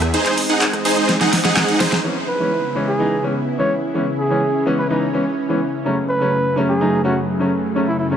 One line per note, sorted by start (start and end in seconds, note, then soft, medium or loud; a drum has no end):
0.00 0.11 E2 loud
0.00 0.12 E3 medium
0.00 0.12 G#4 medium
0.00 cross-stick medium
0.00 closed hi-hat soft
0.14 2.02 G#3 medium
0.14 2.02 C4 medium
0.14 0.38 D#4 medium
0.14 2.02 D#4 medium
0.14 0.38 G#4 medium
0.14 0.38 C5 medium
0.14 closed hi-hat medium
0.26 clap soft
0.26 closed hi-hat soft
0.38 open hi-hat loud
0.49 0.64 D#4 loud
0.49 0.64 G#4 medium
0.49 0.64 F#5 loud
0.49 closed hi-hat soft
0.61 clap loud
0.61 closed hi-hat medium
0.73 cross-stick medium
0.73 closed hi-hat soft
0.85 1.09 D#4 loud
0.85 1.09 G#4 medium
0.85 1.09 C5 loud
0.85 open hi-hat medium
0.97 closed hi-hat soft
1.09 snare medium
1.09 closed hi-hat medium
1.21 1.30 D#4 medium
1.21 1.30 G#4 medium
1.21 1.30 F#5 medium
1.21 snare medium
1.21 closed hi-hat soft
1.33 snare medium
1.33 open hi-hat loud
1.45 1.78 D#4 loud
1.45 1.78 G#4 medium
1.45 1.78 F#5 loud
1.45 snare medium
1.45 closed hi-hat soft
1.57 snare medium
1.57 clap loud
1.57 closed hi-hat medium
1.68 closed hi-hat soft
1.80 1.95 D#4 loud
1.80 1.95 G#4 medium
1.80 1.95 C5 loud
1.80 snare loud
1.80 open hi-hat medium
1.92 snare medium
1.92 closed hi-hat soft
2.04 5.81 C#3 medium
2.04 2.13 E3 medium
2.04 2.13 G#3 medium
2.04 3.93 B3 medium
2.04 2.13 B3 medium
2.04 2.13 C#4 medium
2.04 5.81 E4 medium
2.28 2.76 B4 medium
2.39 2.48 E3 medium
2.39 2.49 G#3 medium
2.39 2.49 B3 medium
2.39 2.49 C#4 medium
2.75 2.89 E3 medium
2.75 2.90 G#3 medium
2.75 2.90 B3 medium
2.75 2.90 C#4 medium
2.88 3.23 G#4 medium
2.99 3.13 E3 medium
2.99 3.13 G#3 medium
2.99 3.14 B3 medium
2.99 3.14 D#4 medium
3.23 3.32 E3 medium
3.23 3.32 G#3 medium
3.23 3.32 B3 medium
3.23 3.32 C#4 medium
3.58 3.68 E3 medium
3.58 3.68 G#3 medium
3.58 3.68 B3 medium
3.58 3.68 C#4 medium
3.58 3.75 C#5 medium
3.94 4.03 E3 medium
3.94 4.03 G#3 medium
3.94 4.04 B3 medium
3.94 5.83 C#4 medium
3.94 4.04 C#4 medium
4.19 4.66 G#4 medium
4.30 4.39 E3 medium
4.30 4.39 G#3 medium
4.30 4.39 B3 medium
4.30 4.40 C#4 medium
4.66 4.80 E3 medium
4.66 4.80 G#3 medium
4.66 4.80 B3 medium
4.66 4.81 C#4 medium
4.78 4.86 B4 medium
4.89 5.04 E3 medium
4.89 5.04 G#3 medium
4.89 5.04 B3 medium
4.89 5.04 D#4 medium
4.89 4.98 B4 medium
5.13 5.22 E3 medium
5.13 5.23 G#3 medium
5.13 5.23 B3 medium
5.13 5.23 C#4 medium
5.49 5.58 E3 medium
5.49 5.58 G#3 medium
5.49 5.58 B3 medium
5.49 5.59 C#4 medium
5.85 8.17 F#2 medium
5.85 5.94 C#3 medium
5.85 8.17 C#3 medium
5.85 5.94 F#3 medium
5.85 8.17 A3 medium
5.85 5.94 A3 medium
5.85 5.94 C#4 medium
6.09 6.57 B4 medium
6.20 6.30 C#3 medium
6.20 6.30 F#3 medium
6.20 6.30 A3 medium
6.20 6.30 C#4 medium
6.56 6.70 C#3 medium
6.56 6.71 F#3 medium
6.56 6.71 A3 medium
6.56 6.71 C#4 medium
6.69 7.04 G#4 medium
6.80 6.94 C#3 medium
6.80 6.94 F#3 medium
6.80 6.95 A3 medium
6.80 6.95 D#4 medium
7.04 7.13 C#3 medium
7.04 7.13 F#3 medium
7.04 7.13 A3 medium
7.04 7.13 C#4 medium
7.04 7.20 F#4 medium
7.39 7.48 C#3 medium
7.39 7.49 F#3 medium
7.39 7.49 A3 medium
7.39 7.49 C#4 medium
7.75 7.84 C#3 medium
7.75 7.84 F#3 medium
7.75 7.85 A3 medium
7.75 7.85 C#4 medium
7.88 7.95 E4 medium
7.99 8.07 E4 medium
8.11 8.17 C#3 medium
8.11 8.17 F#3 medium
8.11 8.17 A3 medium
8.11 8.17 C#4 medium